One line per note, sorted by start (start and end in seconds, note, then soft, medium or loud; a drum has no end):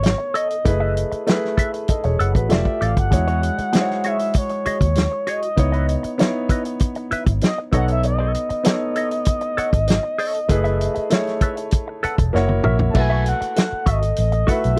0.00 0.14 G#1 medium
0.00 0.68 D#3 medium
0.00 0.67 B3 medium
0.00 0.67 A4 medium
0.00 0.36 C#5 medium
0.00 0.68 C#5 medium
0.00 muted clean electric guitar stroke soft
0.00 closed hi-hat medium
0.06 snare loud
0.18 muted clean electric guitar stroke soft
0.34 0.55 A4 medium
0.34 0.50 C#5 medium
0.34 1.27 D#5 medium
0.34 0.49 D#5 medium
0.34 closed hi-hat medium
0.50 muted clean electric guitar stroke soft
0.50 closed hi-hat soft
0.65 1.03 F#1 medium
0.65 1.15 A3 medium
0.65 1.15 E4 medium
0.65 1.15 G#4 medium
0.65 1.16 B4 medium
0.65 muted clean electric guitar stroke soft
0.65 kick medium
0.65 closed hi-hat medium
0.80 0.95 A4 soft
0.80 0.96 B4 medium
0.80 0.96 E5 medium
0.96 muted clean electric guitar stroke soft
0.96 closed hi-hat medium
1.12 muted clean electric guitar stroke soft
1.12 muted fingered electric bass stroke soft
1.12 closed hi-hat soft
1.27 2.26 A3 medium
1.27 2.26 E4 medium
1.27 1.89 G#4 medium
1.27 1.89 B4 medium
1.27 muted clean electric guitar stroke soft
1.27 snare loud
1.27 closed hi-hat medium
1.45 snare soft
1.57 1.73 A4 medium
1.57 1.73 B4 soft
1.57 1.73 E5 medium
1.57 kick medium
1.57 closed hi-hat medium
1.74 muted clean electric guitar stroke soft
1.74 closed hi-hat soft
1.88 2.04 A4 soft
1.88 2.03 D#5 medium
1.88 kick medium
1.88 closed hi-hat medium
2.03 2.17 E1 medium
2.03 2.34 G#4 soft
2.03 2.33 C#5 medium
2.03 muted clean electric guitar stroke soft
2.03 closed hi-hat soft
2.19 2.32 F#1 medium
2.19 2.39 A4 medium
2.19 2.35 B4 medium
2.19 2.35 F#5 medium
2.19 closed hi-hat medium
2.35 2.47 A1 medium
2.35 2.65 F#4 soft
2.35 2.64 B4 medium
2.35 muted clean electric guitar stroke soft
2.35 kick medium
2.35 closed hi-hat soft
2.49 2.63 F1 medium
2.49 2.99 A3 medium
2.49 2.99 F4 medium
2.49 3.00 G4 medium
2.49 3.00 D5 medium
2.49 2.84 E5 medium
2.49 muted clean electric guitar stroke soft
2.49 snare loud
2.49 closed hi-hat medium
2.65 muted clean electric guitar stroke soft
2.65 kick medium
2.81 2.94 A1 medium
2.81 3.01 G4 medium
2.81 2.97 A4 medium
2.81 2.95 D5 medium
2.81 2.97 F5 medium
2.81 closed hi-hat medium
2.97 3.14 G1 medium
2.97 4.09 F#5 loud
2.97 muted clean electric guitar stroke soft
2.97 kick medium
2.97 closed hi-hat soft
3.11 3.49 E2 medium
3.11 3.61 G#3 medium
3.11 3.61 E4 medium
3.11 3.62 F#4 medium
3.11 3.62 C#5 medium
3.11 muted clean electric guitar stroke soft
3.11 kick medium
3.11 closed hi-hat medium
3.28 3.42 F#4 medium
3.28 3.42 G#4 medium
3.28 3.43 C#5 medium
3.28 closed hi-hat soft
3.43 muted clean electric guitar stroke soft
3.43 closed hi-hat medium
3.58 muted clean electric guitar stroke soft
3.58 muted fingered electric bass stroke soft
3.58 closed hi-hat soft
3.73 4.72 G#3 medium
3.73 4.72 E4 medium
3.73 4.73 F#4 medium
3.73 3.81 C5 medium
3.73 muted clean electric guitar stroke soft
3.73 snare loud
3.73 closed hi-hat medium
3.81 4.76 C#5 medium
3.91 snare soft
4.04 4.20 F#4 soft
4.04 4.19 G#4 medium
4.04 4.19 C#5 medium
4.04 4.36 E5 medium
4.04 closed hi-hat medium
4.19 muted clean electric guitar stroke soft
4.19 closed hi-hat soft
4.33 kick medium
4.33 closed hi-hat medium
4.38 5.31 C#5 medium
4.49 muted clean electric guitar stroke soft
4.49 closed hi-hat soft
4.66 4.86 F#4 medium
4.66 4.81 G#4 medium
4.66 4.81 D#5 medium
4.66 muted fingered electric bass stroke soft
4.66 closed hi-hat medium
4.81 5.06 D#2 medium
4.81 muted clean electric guitar stroke soft
4.81 kick medium
4.81 closed hi-hat soft
4.95 muted clean electric guitar stroke soft
4.95 snare loud
4.95 closed hi-hat medium
5.12 muted clean electric guitar stroke soft
5.27 5.47 F#4 medium
5.27 5.43 G#4 medium
5.27 5.42 C#5 medium
5.27 6.20 D#5 medium
5.27 closed hi-hat medium
5.42 muted clean electric guitar stroke soft
5.42 closed hi-hat soft
5.56 5.95 C#2 loud
5.56 6.06 B3 medium
5.56 6.07 D#4 medium
5.56 6.07 E4 medium
5.56 6.08 C#5 medium
5.56 muted clean electric guitar stroke soft
5.56 kick medium
5.56 closed hi-hat medium
5.72 5.87 E4 soft
5.72 5.88 B4 medium
5.72 5.88 D#5 medium
5.72 closed hi-hat soft
5.89 closed hi-hat medium
6.03 muted clean electric guitar stroke soft
6.03 muted fingered electric bass stroke soft
6.03 closed hi-hat soft
6.18 7.18 B3 medium
6.18 7.18 D#4 medium
6.18 7.18 E4 medium
6.18 7.19 C#5 medium
6.18 muted clean electric guitar stroke soft
6.18 snare loud
6.18 closed hi-hat medium
6.49 6.65 E4 soft
6.49 6.65 B4 soft
6.49 6.64 D#5 medium
6.49 kick medium
6.49 closed hi-hat medium
6.65 muted clean electric guitar stroke soft
6.65 closed hi-hat soft
6.79 kick medium
6.79 closed hi-hat medium
6.95 muted clean electric guitar stroke soft
6.95 closed hi-hat soft
7.11 7.31 E4 medium
7.11 7.27 B4 medium
7.11 7.26 E5 medium
7.11 muted fingered electric bass stroke soft
7.11 closed hi-hat medium
7.26 7.39 G#1 medium
7.26 muted clean electric guitar stroke soft
7.26 kick medium
7.26 closed hi-hat soft
7.41 muted clean electric guitar stroke soft
7.41 snare loud
7.41 closed hi-hat medium
7.46 7.59 D#5 medium
7.58 muted clean electric guitar stroke soft
7.71 8.35 B1 medium
7.71 8.46 B3 medium
7.71 8.47 D#4 medium
7.71 7.93 A4 medium
7.71 8.47 A4 medium
7.71 7.89 C#5 medium
7.71 8.48 C#5 medium
7.71 7.88 D#5 medium
7.71 kick medium
7.71 closed hi-hat medium
7.77 7.89 F#5 loud
7.88 8.04 E5 medium
7.88 muted clean electric guitar stroke soft
7.88 closed hi-hat soft
8.03 12.31 D#5 loud
8.03 muted clean electric guitar stroke soft
8.03 closed hi-hat medium
8.19 8.33 A4 medium
8.19 8.34 C#5 medium
8.19 8.34 D#5 medium
8.34 muted clean electric guitar stroke soft
8.34 closed hi-hat medium
8.49 muted clean electric guitar stroke soft
8.49 muted fingered electric bass stroke soft
8.49 closed hi-hat soft
8.63 9.63 B3 medium
8.63 9.64 D#4 medium
8.63 9.64 A4 medium
8.63 9.65 C#5 medium
8.63 muted clean electric guitar stroke soft
8.63 snare loud
8.63 closed hi-hat medium
8.96 9.12 A4 soft
8.96 9.11 C#5 medium
8.96 9.10 D#5 medium
8.96 closed hi-hat medium
9.11 muted clean electric guitar stroke soft
9.11 closed hi-hat soft
9.25 kick medium
9.25 closed hi-hat medium
9.41 muted clean electric guitar stroke soft
9.41 closed hi-hat soft
9.57 9.77 A4 medium
9.57 9.72 C#5 medium
9.57 9.72 F#5 medium
9.57 muted fingered electric bass stroke soft
9.57 closed hi-hat medium
9.73 9.98 G#1 medium
9.73 muted clean electric guitar stroke soft
9.73 kick medium
9.73 closed hi-hat soft
9.88 muted clean electric guitar stroke soft
9.88 snare loud
9.88 closed hi-hat medium
10.03 muted clean electric guitar stroke soft
10.18 10.39 A4 medium
10.18 10.34 C#5 medium
10.18 10.33 D#5 medium
10.18 open hi-hat medium
10.34 muted clean electric guitar stroke soft
10.34 closed hi-hat soft
10.49 10.87 F#1 medium
10.49 10.98 A3 medium
10.49 10.99 E4 medium
10.49 10.99 G#4 medium
10.49 11.00 B4 medium
10.49 muted clean electric guitar stroke soft
10.49 kick medium
10.49 closed hi-hat medium
10.64 10.79 A4 medium
10.64 10.80 B4 medium
10.64 10.80 E5 medium
10.64 closed hi-hat soft
10.80 muted clean electric guitar stroke soft
10.80 closed hi-hat medium
10.95 muted clean electric guitar stroke soft
10.95 muted fingered electric bass stroke soft
10.95 closed hi-hat soft
11.10 12.09 A3 medium
11.10 12.10 E4 medium
11.10 12.10 G#4 medium
11.10 12.11 C#5 medium
11.10 muted clean electric guitar stroke soft
11.10 snare loud
11.10 closed hi-hat medium
11.27 snare soft
11.27 closed hi-hat soft
11.41 11.58 A4 soft
11.41 11.58 B4 medium
11.41 11.57 E5 soft
11.41 kick medium
11.41 closed hi-hat medium
11.57 muted clean electric guitar stroke soft
11.57 closed hi-hat soft
11.71 kick medium
11.71 closed hi-hat medium
11.88 muted clean electric guitar stroke soft
12.03 12.23 A4 medium
12.03 12.18 B4 medium
12.03 12.18 F#5 medium
12.03 12.32 A5 medium
12.03 muted fingered electric bass stroke soft
12.03 closed hi-hat medium
12.18 12.31 E1 medium
12.18 muted clean electric guitar stroke soft
12.18 kick medium
12.18 closed hi-hat soft
12.33 12.59 F#1 medium
12.33 12.83 A#3 medium
12.33 12.83 E4 medium
12.33 12.84 F#4 medium
12.33 12.84 C#5 medium
12.33 12.63 F#5 medium
12.33 muted clean electric guitar stroke soft
12.33 snare soft
12.48 muted clean electric guitar stroke soft
12.48 high tom soft
12.64 12.90 A#1 medium
12.64 12.84 F#4 medium
12.64 12.80 A#4 medium
12.64 12.93 E5 medium
12.64 12.78 E5 medium
12.64 mid tom medium
12.79 muted clean electric guitar stroke soft
12.79 floor tom medium
12.90 13.93 A3 medium
12.90 13.01 A5 medium
12.95 13.32 B1 loud
12.95 13.93 E4 medium
12.95 13.94 F#4 medium
12.95 13.94 B4 medium
12.95 muted clean electric guitar stroke soft
12.95 kick medium
12.95 crash medium
12.99 13.28 G#5 medium
13.10 13.25 F#4 medium
13.10 13.25 A4 medium
13.10 13.26 E5 medium
13.26 13.91 F#5 medium
13.26 closed hi-hat medium
13.41 muted clean electric guitar stroke soft
13.41 muted fingered electric bass stroke soft
13.41 closed hi-hat soft
13.55 14.79 A4 soft
13.55 muted clean electric guitar stroke soft
13.55 snare loud
13.55 closed hi-hat medium
13.72 muted fingered electric bass stroke soft
13.86 14.12 G#1 medium
13.86 14.02 F#4 soft
13.86 14.02 A4 medium
13.86 14.19 D#5 medium
13.86 14.01 E5 medium
13.86 kick medium
13.86 closed hi-hat medium
14.02 muted clean electric guitar stroke soft
14.02 closed hi-hat soft
14.16 14.43 A1 medium
14.16 14.52 D#5 medium
14.16 closed hi-hat medium
14.32 muted clean electric guitar stroke soft
14.32 closed hi-hat soft
14.47 14.79 A3 medium
14.47 14.79 E4 medium
14.47 14.68 F#4 medium
14.47 14.79 F#4 medium
14.47 14.62 A4 medium
14.47 14.79 B4 medium
14.47 14.79 E5 loud
14.47 14.61 F#5 medium
14.47 kick medium
14.47 closed hi-hat medium
14.62 14.77 B1 medium
14.62 muted clean electric guitar stroke soft
14.62 closed hi-hat soft